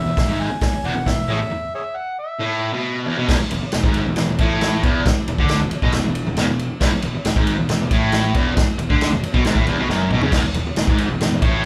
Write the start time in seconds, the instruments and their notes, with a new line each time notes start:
Already playing: harmonica E5
0.05 picked electric bass E1, distorted electric guitar E2
0.17 picked electric bass E1, distorted electric guitar E2, kick, snare, open hi-hat
0.27 picked electric bass G#1, distorted electric guitar G#2
0.40 harmonica G#5
0.51 muted picked electric bass stroke, muted distorted electric guitar stroke
0.61 muted picked electric bass stroke, muted distorted electric guitar stroke, kick, snare, open hi-hat
0.73 muted distorted electric guitar stroke, muted picked electric bass stroke
0.84 picked electric bass E1, distorted electric guitar E2, harmonica F#5
0.95 picked electric bass E1, distorted electric guitar E2
1.06 picked electric bass E1, distorted electric guitar E2, harmonica E5, kick, snare, open hi-hat
1.28 picked electric bass A1, distorted electric guitar A2, harmonica G#4 C#5 E5
1.40 muted picked electric bass stroke, muted distorted electric guitar stroke
1.51 distorted electric guitar E2
1.75 harmonica G#4 C#5 E5
1.96 harmonica F#5
2.19 harmonica E5
2.39 distorted electric guitar A2
2.73 distorted electric guitar B2
3.06 distorted electric guitar E2
3.18 distorted electric guitar B2
3.28 picked electric bass E1, distorted electric guitar E2, kick, snare, crash
3.40 muted distorted electric guitar stroke, muted picked electric bass stroke
3.51 picked electric bass E1, distorted electric guitar E2, ride
3.62 muted picked electric bass stroke, muted distorted electric guitar stroke
3.72 picked electric bass E1, distorted electric guitar E2, snare, ride
3.84 picked electric bass G#1, distorted electric guitar G#2, kick
3.94 ride
4.06 picked electric bass E1, distorted electric guitar E2
4.16 picked electric bass E1, distorted electric guitar E2, snare, ride
4.29 picked electric bass E1, distorted electric guitar E2
4.38 picked electric bass A1, distorted electric guitar A2, kick, ride
4.61 snare, ride
4.83 picked electric bass E1, distorted electric guitar E2, kick, ride
5.05 muted picked electric bass stroke, muted distorted electric guitar stroke, kick, snare, ride
5.28 picked electric bass E1, distorted electric guitar E2, ride
5.38 picked electric bass D2, distorted electric guitar D3, kick
5.49 snare, ride
5.61 picked electric bass E1, distorted electric guitar E2
5.71 muted picked electric bass stroke, muted distorted electric guitar stroke, ride
5.82 picked electric bass B1, distorted electric guitar B2, kick
5.92 picked electric bass E1, distorted electric guitar E2, snare, ride
6.04 picked electric bass E1, distorted electric guitar E2
6.15 ride
6.25 picked electric bass E1, distorted electric guitar E2
6.36 picked electric bass E1, distorted electric guitar E2, snare, ride
6.47 picked electric bass E1, distorted electric guitar E2
6.59 ride
6.81 picked electric bass E1, distorted electric guitar E2, kick, snare, crash
6.91 muted picked electric bass stroke, muted distorted electric guitar stroke
7.02 picked electric bass E1, distorted electric guitar E2, ride
7.13 muted picked electric bass stroke, muted distorted electric guitar stroke
7.25 picked electric bass E1, distorted electric guitar E2, snare, ride
7.36 picked electric bass G#1, distorted electric guitar G#2, kick
7.47 ride
7.58 picked electric bass E1, distorted electric guitar E2
7.68 picked electric bass E1, distorted electric guitar E2, snare, ride
7.79 picked electric bass E1, distorted electric guitar E2
7.91 picked electric bass A1, distorted electric guitar A2, kick, ride
8.12 snare, ride
8.34 picked electric bass E1, distorted electric guitar E2, kick, ride
8.56 muted distorted electric guitar stroke, muted picked electric bass stroke, kick, snare, ride
8.78 picked electric bass E1, distorted electric guitar E2, ride
8.89 picked electric bass D2, distorted electric guitar D3, kick
9.01 snare, ride
9.11 picked electric bass E1, distorted electric guitar E2
9.23 muted picked electric bass stroke, muted distorted electric guitar stroke, ride
9.33 picked electric bass B1, distorted electric guitar B2, kick
9.44 picked electric bass G#1, distorted electric guitar G#2, snare, ride
9.55 picked electric bass A1, distorted electric guitar A2, kick
9.66 picked electric bass E1, distorted electric guitar E2, ride
9.77 picked electric bass B1, distorted electric guitar B2
9.87 picked electric bass F#1, distorted electric guitar F#2, snare
10.09 picked electric bass B1, distorted electric guitar B2, mid tom
10.21 picked electric bass C#2, distorted electric guitar C#3, floor tom
10.32 picked electric bass E1, distorted electric guitar E2, kick, snare, crash
10.44 muted picked electric bass stroke, muted distorted electric guitar stroke
10.53 picked electric bass E1, distorted electric guitar E2, ride
10.65 muted picked electric bass stroke, muted distorted electric guitar stroke
10.76 picked electric bass E1, distorted electric guitar E2, snare, ride
10.87 picked electric bass G#1, distorted electric guitar G#2, kick
10.98 ride
11.09 picked electric bass E1, distorted electric guitar E2
11.19 picked electric bass E1, distorted electric guitar E2, snare, ride
11.30 picked electric bass E1, distorted electric guitar E2
11.42 picked electric bass A1, distorted electric guitar A2, kick, ride